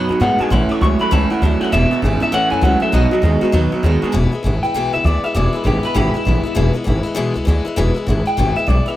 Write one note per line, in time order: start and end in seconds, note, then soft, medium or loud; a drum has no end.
0.00 0.11 B5 loud
0.09 0.19 G#2 medium
0.09 0.20 B2 medium
0.09 0.20 F#3 medium
0.09 0.19 B3 soft
0.09 0.21 D#4 soft
0.09 0.20 F#4 medium
0.09 0.21 G#5 loud
0.20 0.36 A2 medium
0.20 0.38 B2 medium
0.20 0.39 F#3 medium
0.20 0.38 G#3 medium
0.20 0.40 B3 medium
0.20 0.40 D#4 medium
0.20 0.37 F#4 medium
0.20 0.41 F#5 medium
0.39 0.50 B2 medium
0.39 0.50 G#3 medium
0.39 0.52 B3 soft
0.39 0.51 D#4 medium
0.39 0.50 F#4 soft
0.39 0.52 G#5 medium
0.39 muted upright bass stroke medium
0.50 0.66 A1 medium
0.50 0.70 A2 medium
0.50 0.68 A2 medium
0.50 0.70 E3 medium
0.50 0.69 E3 medium
0.50 0.71 A3 medium
0.50 0.70 C#4 medium
0.50 0.68 E4 medium
0.50 0.72 B5 loud
0.69 0.80 A2 medium
0.69 0.80 E3 medium
0.69 0.82 A3 soft
0.69 0.82 C#4 medium
0.69 0.81 E4 medium
0.69 0.81 C#6 loud
0.69 muted upright bass stroke medium
0.81 0.97 C#2 medium
0.81 0.98 A2 medium
0.81 1.00 E3 medium
0.81 0.98 F#3 loud
0.81 1.01 A3 medium
0.81 0.99 C#4 medium
0.81 0.98 E4 medium
0.81 0.87 C#6 loud
0.99 1.10 A2 medium
0.99 1.11 F#3 medium
0.99 1.11 A3 soft
0.99 1.11 C#4 soft
0.99 1.11 E4 medium
0.99 1.13 B5 loud
0.99 muted upright bass stroke medium
1.11 1.27 C#2 medium
1.11 1.30 A2 medium
1.11 1.29 A2 loud
1.11 1.30 E3 medium
1.11 1.29 E3 loud
1.11 1.31 A3 medium
1.11 1.31 C#4 medium
1.11 1.29 E4 medium
1.11 1.31 A5 loud
1.30 1.41 A2 medium
1.30 1.41 E3 medium
1.30 1.42 A3 soft
1.30 1.42 C#4 soft
1.30 1.41 E4 medium
1.30 1.43 F#5 loud
1.42 1.57 D2 medium
1.42 1.59 A2 medium
1.42 1.61 E3 medium
1.42 1.59 F#3 loud
1.42 1.61 A3 medium
1.42 1.61 C#4 medium
1.42 1.60 E4 medium
1.42 1.62 E5 loud
1.60 1.71 A2 medium
1.60 1.71 F#3 medium
1.60 1.73 C#4 soft
1.60 1.72 E4 medium
1.60 1.72 F#5 loud
1.64 1.73 A3 soft
1.72 1.88 E1 medium
1.72 1.89 E2 medium
1.72 1.91 E2 medium
1.72 1.91 B2 medium
1.72 1.90 B2 medium
1.72 1.92 E3 medium
1.72 1.92 G#3 medium
1.72 1.91 B3 medium
1.72 1.90 E4 medium
1.72 2.01 E5 loud
1.91 2.01 E2 medium
1.91 2.01 B2 medium
1.91 2.01 E3 soft
1.91 2.03 G#3 soft
1.91 2.03 B3 soft
1.91 2.02 E4 soft
1.91 muted upright bass stroke medium
2.02 2.18 G#1 medium
2.02 2.19 E2 medium
2.02 2.20 C#3 loud
2.02 2.21 E3 medium
2.02 2.21 G#3 medium
2.02 2.21 B3 medium
2.02 2.19 E4 medium
2.20 2.31 E2 medium
2.20 2.32 C#3 medium
2.20 2.32 E3 medium
2.20 2.33 G#3 medium
2.20 2.33 B3 medium
2.20 2.32 E4 medium
2.20 2.33 E5 medium
2.20 muted upright bass stroke medium
2.32 2.48 A1 medium
2.32 2.51 A2 medium
2.32 2.50 A2 medium
2.32 2.52 E3 medium
2.32 2.50 E3 loud
2.32 2.52 A3 medium
2.32 2.51 C#4 medium
2.32 2.49 E4 medium
2.32 2.51 F#5 loud
2.50 2.61 F#2 medium
2.50 2.61 A2 medium
2.50 2.62 E3 medium
2.50 2.61 A3 soft
2.50 2.63 C#4 soft
2.50 2.62 E4 medium
2.50 2.63 G#5 loud
2.61 2.78 C#2 loud
2.61 2.80 A2 medium
2.61 2.81 E3 medium
2.61 2.80 F#3 loud
2.61 2.82 A3 medium
2.61 2.81 C#4 medium
2.61 2.79 E4 medium
2.61 2.82 F#5 loud
2.80 2.92 A2 medium
2.80 2.92 F#3 medium
2.80 2.93 A3 soft
2.80 2.93 C#4 soft
2.80 2.92 E4 medium
2.80 2.94 E5 loud
2.80 muted upright bass stroke medium
2.92 3.08 B1 medium
2.92 3.12 B2 medium
2.92 3.10 B2 medium
2.92 3.12 F#3 medium
2.92 3.11 F#3 medium
2.92 3.13 B3 medium
2.92 3.12 D#4 medium
2.92 3.10 F#4 medium
2.92 4.03 D#5 medium
3.11 3.22 B2 medium
3.11 3.22 F#3 medium
3.11 3.22 B3 soft
3.11 3.23 D#4 medium
3.11 3.23 F#4 medium
3.22 3.38 D#2 medium
3.22 3.40 B2 medium
3.22 3.42 F#3 medium
3.22 3.41 G#3 loud
3.22 3.42 B3 medium
3.22 3.42 D#4 medium
3.22 3.40 F#4 medium
3.41 3.52 B2 medium
3.41 3.53 G#3 medium
3.41 3.52 B3 medium
3.41 3.53 D#4 medium
3.41 3.53 F#4 medium
3.41 muted upright bass stroke medium
3.52 3.69 D#2 loud
3.52 3.72 B2 medium
3.52 3.71 B2 medium
3.52 3.73 F#3 medium
3.52 3.71 F#3 loud
3.52 3.73 B3 medium
3.52 3.73 D#4 loud
3.52 3.71 F#4 loud
3.72 3.82 B2 medium
3.72 3.83 F#3 medium
3.72 3.83 B3 soft
3.72 3.84 D#4 medium
3.72 3.84 F#4 medium
3.72 muted upright bass stroke medium
3.83 3.99 D#2 medium
3.83 4.01 B2 medium
3.83 4.03 F#3 medium
3.83 4.01 G#3 medium
3.83 4.03 B3 medium
3.83 4.03 D#4 medium
3.83 4.01 F#4 medium
4.02 4.13 B2 medium
4.02 4.13 G#3 medium
4.02 4.13 B3 medium
4.02 4.14 D#4 medium
4.02 4.14 F#4 medium
4.02 muted upright bass stroke medium
4.12 4.29 E1 medium
4.12 4.32 E2 medium
4.12 4.33 B2 loud
4.12 4.33 E3 medium
4.12 4.33 G#3 medium
4.12 4.32 B3 loud
4.12 4.31 E4 loud
4.32 4.42 E3 soft
4.32 4.43 G#3 medium
4.32 4.44 B3 medium
4.32 4.44 E4 medium
4.43 4.59 G#1 medium
4.43 4.63 E3 medium
4.43 4.63 G#3 medium
4.43 4.63 B3 medium
4.43 4.62 E4 medium
4.63 4.74 E3 soft
4.63 4.75 G#3 soft
4.63 4.75 B3 medium
4.63 4.74 E4 medium
4.63 4.93 G5 medium
4.63 muted upright bass stroke medium
4.74 4.90 B1 medium
4.74 4.94 E2 medium
4.74 4.94 B2 medium
4.74 4.94 E3 medium
4.74 4.94 G#3 medium
4.74 4.93 B3 loud
4.74 4.92 E4 medium
4.93 5.02 C#2 loud
4.93 5.03 E3 soft
4.93 5.05 G#3 soft
4.93 5.05 B3 soft
4.93 5.04 E4 medium
4.93 5.05 E5 medium
5.04 5.20 D2 medium
5.04 5.24 E3 medium
5.04 5.24 G#3 medium
5.04 5.24 B3 medium
5.04 5.23 E4 medium
5.04 5.24 D5 medium
5.23 5.34 E3 soft
5.23 5.35 G#3 soft
5.23 5.35 B3 soft
5.23 5.35 E4 medium
5.23 5.36 E5 loud
5.23 muted upright bass stroke medium
5.34 5.50 E1 medium
5.34 5.54 E2 medium
5.34 5.54 B2 medium
5.34 5.54 E3 medium
5.34 5.54 G#3 medium
5.34 5.53 B3 medium
5.34 5.51 E4 medium
5.34 5.55 D5 medium
5.53 5.63 E3 soft
5.53 5.64 G#3 soft
5.53 5.65 B3 soft
5.53 5.65 E4 medium
5.53 5.65 B4 loud
5.64 5.80 G#1 loud
5.64 5.84 E3 medium
5.64 5.84 G#3 medium
5.64 5.83 B3 medium
5.64 5.82 E4 medium
5.64 5.85 G4 medium
5.83 5.94 E3 medium
5.83 5.95 G#3 medium
5.83 5.95 B3 medium
5.83 5.95 E4 medium
5.83 5.96 B4 medium
5.83 muted upright bass stroke medium
5.94 6.11 G#1 loud
5.94 6.14 E2 medium
5.94 6.14 B2 medium
5.94 6.15 E3 medium
5.94 6.15 G#3 medium
5.94 6.14 B3 medium
5.94 6.13 E4 loud
5.94 6.15 G4 loud
6.14 6.24 E3 soft
6.14 6.25 G#3 soft
6.14 6.26 B3 soft
6.14 6.25 E4 medium
6.14 6.74 E4 medium
6.14 muted upright bass stroke medium
6.25 6.41 A1 medium
6.25 6.45 E3 medium
6.25 6.45 G#3 medium
6.25 6.44 B3 medium
6.25 6.42 E4 medium
6.43 6.54 E3 soft
6.43 6.55 G#3 soft
6.43 6.55 B3 soft
6.43 6.55 E4 medium
6.43 muted upright bass stroke medium
6.55 6.71 E1 medium
6.55 6.74 E2 medium
6.55 6.75 B2 medium
6.55 6.75 E3 medium
6.55 6.74 G#3 medium
6.55 6.73 B3 medium
6.55 6.72 E4 loud
6.73 6.83 E3 soft
6.73 6.84 G#3 medium
6.73 6.85 B3 medium
6.73 6.85 E4 medium
6.73 muted upright bass stroke medium
6.84 7.02 G#1 loud
6.84 7.04 E3 medium
6.84 7.04 G#3 medium
6.84 7.03 B3 medium
6.84 7.02 E4 medium
7.03 7.15 E3 medium
7.03 7.15 G#3 medium
7.03 7.16 B3 medium
7.03 7.15 E4 medium
7.03 muted upright bass stroke medium
7.15 7.32 B1 medium
7.15 7.35 E2 loud
7.15 7.35 B2 medium
7.15 7.35 E3 medium
7.15 7.35 G#3 loud
7.15 7.34 B3 loud
7.15 7.33 E4 loud
7.34 7.45 C#2 medium
7.34 7.44 E3 soft
7.34 7.47 B3 medium
7.34 7.46 E4 medium
7.45 7.62 D2 loud
7.45 7.65 E3 medium
7.45 7.66 G#3 medium
7.45 7.65 B3 medium
7.45 7.64 E4 medium
7.65 7.76 E3 soft
7.65 7.76 G#3 medium
7.65 7.77 B3 medium
7.65 7.76 E4 medium
7.76 7.92 E1 medium
7.76 7.96 E2 loud
7.76 7.96 B2 loud
7.76 7.96 E3 medium
7.76 7.96 G#3 loud
7.76 7.95 B3 medium
7.76 7.93 E4 loud
7.95 8.05 E3 soft
7.95 8.07 G#3 medium
7.95 8.07 B3 medium
7.95 8.06 E4 medium
7.95 muted upright bass stroke medium
8.07 8.22 G#1 medium
8.07 8.26 E3 medium
8.07 8.27 G#3 medium
8.07 8.26 B3 medium
8.07 8.24 E4 medium
8.26 8.37 E3 soft
8.26 8.38 G#3 medium
8.26 8.38 B3 medium
8.26 8.37 E4 medium
8.26 8.56 G5 loud
8.26 muted upright bass stroke medium
8.37 8.53 G#1 medium
8.37 8.56 E2 medium
8.37 8.57 B2 medium
8.37 8.57 E3 medium
8.37 8.57 G#3 medium
8.37 8.56 B3 medium
8.37 8.55 E4 medium
8.56 8.65 E3 soft
8.56 8.67 G#3 soft
8.56 8.68 B3 soft
8.56 8.67 E4 soft
8.56 8.68 E5 medium
8.56 muted upright bass stroke medium
8.67 8.83 B1 loud
8.67 8.86 E3 medium
8.67 8.87 G#3 medium
8.67 8.86 B3 medium
8.67 8.85 E4 medium
8.67 8.88 D5 loud
8.86 8.96 E3 soft
8.86 8.96 G#3 soft
8.86 8.96 B3 soft
8.86 8.96 E4 medium
8.86 8.96 E5 medium
8.86 muted upright bass stroke medium